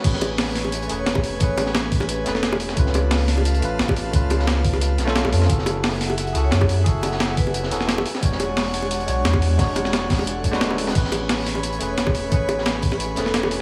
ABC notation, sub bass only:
X:1
M:4/4
L:1/16
Q:1/4=176
K:A
V:1 name="Sub bass" clef=bass
A,,,8- A,,,2 E,,,2 E,,,4 | A,,,8- A,,,2 E,,,6 | C,,8- C,,2 A,,,2 A,,,4 | C,,8- C,,2 B,,,3 B,,, ^E,,2 |
F,,,8- F,,,2 C,,2 F,,4 | F,,,8- F,,,2 E,,,4 z2 | E,,,8- E,,,2 B,,,2 E,,4 | E,,,8- E,,,2 D,,,6 |
A,,,8- A,,,2 E,,,2 E,,,4 | A,,,8- A,,,2 E,,,6 |]